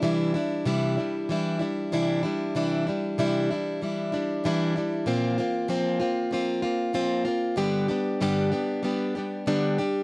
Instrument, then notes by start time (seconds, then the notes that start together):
steel-string acoustic guitar
0.02 C3 E3 G3 D4 E4
0.34 G3 D4 E4
0.65 C3 E3 G3 D4 E4
0.97 G3 D4 E4
1.29 E3 G3 D4 E4
1.59 G3 D4 E4
1.92 C3 E3 G3 D4 E4
2.23 G3 D4 E4
2.55 C3 E3 G3 D4 E4
2.87 G3 D4 E4
3.18 C3 E3 G3 D4 E4
3.51 G3 D4 E4
3.82 E3 G3 D4 E4
4.12 G3 D4 E4
4.44 C3 E3 G3 D4 E4
4.76 G3 D4 E4
5.06 A#2 F3 A#3 C4 F4
5.38 A#3 C4 F4
5.68 A#2 F3 A#3 C4 F4
6.00 A#3 C4 F4
6.31 F3 A#3 C4 F4
6.62 A#3 C4 F4
6.93 A#2 F3 A#3 C4 F4
7.25 A#3 C4 F4
7.56 G2 D3 G3 B3 D4 G4
7.88 G3 B3 D4 G4
8.20 G2 D3 G3 B3 D4 G4
8.52 G3 B3 D4 G4
8.83 G3 B3 D4 G4
9.15 G3 B3 D4 G4
9.46 G2 D3 G3 B3 D4 G4
9.78 G3 D4 G4